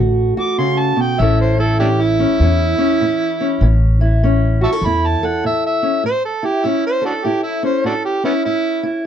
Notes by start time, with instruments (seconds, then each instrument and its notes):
Already playing: upright bass A1, steel-string acoustic guitar D3 A3 F#4
0.37 steel-string acoustic guitar F#4, harmonica D6
0.58 steel-string acoustic guitar C#3, harmonica C6
0.79 harmonica A5
0.96 steel-string acoustic guitar B2
1.01 harmonica G5
1.19 upright bass A1, steel-string acoustic guitar A2 E3 C#4 E4 A4, harmonica E5
1.41 harmonica C5
1.58 steel-string acoustic guitar E4, harmonica A4
1.79 steel-string acoustic guitar A2 C#4, harmonica D4 E4 G4
2.01 harmonica E4
2.19 steel-string acoustic guitar C#4
2.40 upright bass E2, steel-string acoustic guitar A2 C#4
2.78 steel-string acoustic guitar C#4
3.01 steel-string acoustic guitar A2
3.40 steel-string acoustic guitar C#4
3.61 upright bass A1, steel-string acoustic guitar A2
4.01 steel-string acoustic guitar E4
4.23 steel-string acoustic guitar A2 C#4
4.61 steel-string acoustic guitar F#4, harmonica E5 A5 C#6
4.72 steel-string acoustic guitar A4
4.82 upright bass E2, steel-string acoustic guitar A2, harmonica B5
4.86 steel-string acoustic guitar E4
5.06 harmonica A5
5.23 steel-string acoustic guitar A4, harmonica F#5
5.44 steel-string acoustic guitar A2, harmonica E5
5.66 harmonica E5
5.83 steel-string acoustic guitar C#4
6.04 steel-string acoustic guitar A2, harmonica C5
6.25 harmonica A4
6.43 steel-string acoustic guitar E4, harmonica G4
6.64 steel-string acoustic guitar A2 C#4, harmonica E4
6.86 harmonica C5
7.02 harmonica D4 F#4 A4, steel-string acoustic guitar A4
7.24 steel-string acoustic guitar A2 E4, harmonica G4
7.43 harmonica E4
7.63 steel-string acoustic guitar C#4, harmonica C5
7.84 steel-string acoustic guitar A2, harmonica D4 F#4 A4
8.05 harmonica G4
8.24 harmonica B3 C#4 E4, steel-string acoustic guitar C#4
8.45 steel-string acoustic guitar A2, harmonica E4
8.83 steel-string acoustic guitar E4